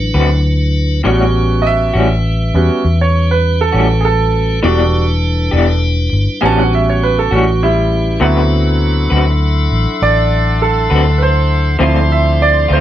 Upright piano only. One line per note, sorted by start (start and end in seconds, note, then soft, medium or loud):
1.04 1.90 G3 soft
1.04 1.91 B3 soft
1.04 1.91 C#4 soft
1.04 1.91 F#4 medium
1.62 1.65 D#5 medium
1.67 2.96 E5 medium
2.54 2.81 G3 soft
2.54 2.82 B3 soft
2.54 2.82 C#4 soft
2.54 2.82 F#4 soft
3.01 3.29 C#5 medium
3.31 3.59 B4 medium
3.61 4.03 A4 medium
4.01 4.04 G#4 soft
4.05 5.80 A4 medium
4.62 5.03 G3 soft
4.62 5.03 D4 soft
4.62 5.03 F#4 soft
6.41 7.28 G3 soft
6.41 7.28 B3 soft
6.41 7.29 C#4 soft
6.41 7.29 F#4 medium
6.41 6.44 G#5 medium
6.45 6.58 A5 medium
6.59 6.72 F#5 medium
6.75 6.88 E5 medium
6.90 7.03 C#5 medium
7.03 7.17 B4 medium
7.19 7.32 A4 medium
7.33 7.62 F#4 medium
7.63 8.18 G3 medium
7.63 8.20 E4 medium
8.21 9.07 F#3 soft
8.21 9.07 B3 soft
8.21 9.07 C4 soft
8.21 9.07 E4 soft
10.02 10.60 D5 medium
10.62 11.19 A4 medium
11.18 11.21 B4 soft
11.22 12.08 C5 medium
11.79 12.65 F3 soft
11.79 12.66 C4 soft
11.79 12.66 E4 soft
12.12 12.40 E5 medium
12.42 12.70 D5 medium
12.73 12.80 C5 medium